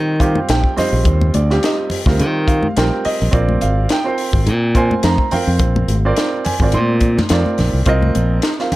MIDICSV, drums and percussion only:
0, 0, Header, 1, 2, 480
1, 0, Start_track
1, 0, Tempo, 567644
1, 897, Time_signature, 4, 2, 24, 8
1, 7407, End_track
2, 0, Start_track
2, 0, Title_t, "Drums"
2, 170, Note_on_c, 9, 36, 77
2, 177, Note_on_c, 9, 42, 61
2, 254, Note_off_c, 9, 36, 0
2, 262, Note_off_c, 9, 42, 0
2, 300, Note_on_c, 9, 63, 73
2, 384, Note_off_c, 9, 63, 0
2, 411, Note_on_c, 9, 42, 93
2, 422, Note_on_c, 9, 38, 113
2, 496, Note_off_c, 9, 42, 0
2, 506, Note_off_c, 9, 38, 0
2, 538, Note_on_c, 9, 36, 64
2, 622, Note_off_c, 9, 36, 0
2, 654, Note_on_c, 9, 46, 69
2, 662, Note_on_c, 9, 64, 62
2, 665, Note_on_c, 9, 38, 33
2, 739, Note_off_c, 9, 46, 0
2, 746, Note_off_c, 9, 64, 0
2, 749, Note_off_c, 9, 38, 0
2, 890, Note_on_c, 9, 36, 104
2, 891, Note_on_c, 9, 42, 84
2, 975, Note_off_c, 9, 36, 0
2, 976, Note_off_c, 9, 42, 0
2, 1027, Note_on_c, 9, 63, 74
2, 1112, Note_off_c, 9, 63, 0
2, 1133, Note_on_c, 9, 42, 60
2, 1135, Note_on_c, 9, 63, 61
2, 1217, Note_off_c, 9, 42, 0
2, 1220, Note_off_c, 9, 63, 0
2, 1272, Note_on_c, 9, 38, 31
2, 1356, Note_off_c, 9, 38, 0
2, 1377, Note_on_c, 9, 42, 76
2, 1387, Note_on_c, 9, 38, 98
2, 1462, Note_off_c, 9, 42, 0
2, 1472, Note_off_c, 9, 38, 0
2, 1605, Note_on_c, 9, 64, 57
2, 1617, Note_on_c, 9, 46, 75
2, 1690, Note_off_c, 9, 64, 0
2, 1701, Note_off_c, 9, 46, 0
2, 1742, Note_on_c, 9, 36, 85
2, 1757, Note_on_c, 9, 38, 32
2, 1827, Note_off_c, 9, 36, 0
2, 1841, Note_off_c, 9, 38, 0
2, 1856, Note_on_c, 9, 42, 82
2, 1941, Note_off_c, 9, 42, 0
2, 2094, Note_on_c, 9, 36, 75
2, 2100, Note_on_c, 9, 42, 62
2, 2179, Note_off_c, 9, 36, 0
2, 2184, Note_off_c, 9, 42, 0
2, 2220, Note_on_c, 9, 63, 65
2, 2305, Note_off_c, 9, 63, 0
2, 2339, Note_on_c, 9, 42, 81
2, 2349, Note_on_c, 9, 38, 102
2, 2424, Note_off_c, 9, 42, 0
2, 2434, Note_off_c, 9, 38, 0
2, 2577, Note_on_c, 9, 46, 76
2, 2662, Note_off_c, 9, 46, 0
2, 2816, Note_on_c, 9, 36, 111
2, 2818, Note_on_c, 9, 42, 74
2, 2900, Note_off_c, 9, 36, 0
2, 2902, Note_off_c, 9, 42, 0
2, 2948, Note_on_c, 9, 63, 62
2, 3033, Note_off_c, 9, 63, 0
2, 3055, Note_on_c, 9, 63, 56
2, 3057, Note_on_c, 9, 42, 55
2, 3139, Note_off_c, 9, 63, 0
2, 3142, Note_off_c, 9, 42, 0
2, 3291, Note_on_c, 9, 42, 72
2, 3302, Note_on_c, 9, 38, 101
2, 3376, Note_off_c, 9, 42, 0
2, 3386, Note_off_c, 9, 38, 0
2, 3534, Note_on_c, 9, 46, 76
2, 3618, Note_off_c, 9, 46, 0
2, 3663, Note_on_c, 9, 36, 77
2, 3748, Note_off_c, 9, 36, 0
2, 3776, Note_on_c, 9, 42, 75
2, 3861, Note_off_c, 9, 42, 0
2, 4016, Note_on_c, 9, 36, 75
2, 4016, Note_on_c, 9, 42, 61
2, 4100, Note_off_c, 9, 36, 0
2, 4101, Note_off_c, 9, 42, 0
2, 4152, Note_on_c, 9, 63, 71
2, 4237, Note_off_c, 9, 63, 0
2, 4253, Note_on_c, 9, 42, 89
2, 4263, Note_on_c, 9, 38, 111
2, 4338, Note_off_c, 9, 42, 0
2, 4348, Note_off_c, 9, 38, 0
2, 4382, Note_on_c, 9, 36, 73
2, 4466, Note_off_c, 9, 36, 0
2, 4492, Note_on_c, 9, 46, 75
2, 4506, Note_on_c, 9, 64, 70
2, 4577, Note_off_c, 9, 46, 0
2, 4591, Note_off_c, 9, 64, 0
2, 4729, Note_on_c, 9, 42, 81
2, 4732, Note_on_c, 9, 36, 104
2, 4813, Note_off_c, 9, 42, 0
2, 4817, Note_off_c, 9, 36, 0
2, 4871, Note_on_c, 9, 63, 85
2, 4955, Note_off_c, 9, 63, 0
2, 4976, Note_on_c, 9, 42, 60
2, 4988, Note_on_c, 9, 63, 58
2, 5060, Note_off_c, 9, 42, 0
2, 5072, Note_off_c, 9, 63, 0
2, 5213, Note_on_c, 9, 42, 75
2, 5223, Note_on_c, 9, 38, 98
2, 5298, Note_off_c, 9, 42, 0
2, 5308, Note_off_c, 9, 38, 0
2, 5450, Note_on_c, 9, 46, 75
2, 5463, Note_on_c, 9, 64, 73
2, 5535, Note_off_c, 9, 46, 0
2, 5548, Note_off_c, 9, 64, 0
2, 5579, Note_on_c, 9, 36, 80
2, 5664, Note_off_c, 9, 36, 0
2, 5682, Note_on_c, 9, 42, 82
2, 5698, Note_on_c, 9, 63, 62
2, 5767, Note_off_c, 9, 42, 0
2, 5782, Note_off_c, 9, 63, 0
2, 5924, Note_on_c, 9, 42, 64
2, 5929, Note_on_c, 9, 36, 76
2, 6008, Note_off_c, 9, 42, 0
2, 6013, Note_off_c, 9, 36, 0
2, 6068, Note_on_c, 9, 38, 35
2, 6076, Note_on_c, 9, 63, 78
2, 6076, Note_on_c, 9, 64, 68
2, 6153, Note_off_c, 9, 38, 0
2, 6161, Note_off_c, 9, 63, 0
2, 6161, Note_off_c, 9, 64, 0
2, 6165, Note_on_c, 9, 42, 85
2, 6175, Note_on_c, 9, 38, 109
2, 6249, Note_off_c, 9, 42, 0
2, 6259, Note_off_c, 9, 38, 0
2, 6307, Note_on_c, 9, 63, 67
2, 6392, Note_off_c, 9, 63, 0
2, 6408, Note_on_c, 9, 46, 71
2, 6415, Note_on_c, 9, 64, 70
2, 6418, Note_on_c, 9, 38, 32
2, 6492, Note_off_c, 9, 46, 0
2, 6500, Note_off_c, 9, 64, 0
2, 6502, Note_off_c, 9, 38, 0
2, 6643, Note_on_c, 9, 42, 79
2, 6649, Note_on_c, 9, 36, 100
2, 6728, Note_off_c, 9, 42, 0
2, 6733, Note_off_c, 9, 36, 0
2, 6785, Note_on_c, 9, 63, 76
2, 6869, Note_off_c, 9, 63, 0
2, 6891, Note_on_c, 9, 42, 54
2, 6894, Note_on_c, 9, 63, 68
2, 6975, Note_off_c, 9, 42, 0
2, 6978, Note_off_c, 9, 63, 0
2, 7121, Note_on_c, 9, 42, 69
2, 7131, Note_on_c, 9, 38, 101
2, 7206, Note_off_c, 9, 42, 0
2, 7216, Note_off_c, 9, 38, 0
2, 7265, Note_on_c, 9, 38, 34
2, 7349, Note_off_c, 9, 38, 0
2, 7372, Note_on_c, 9, 46, 72
2, 7373, Note_on_c, 9, 64, 70
2, 7407, Note_off_c, 9, 46, 0
2, 7407, Note_off_c, 9, 64, 0
2, 7407, End_track
0, 0, End_of_file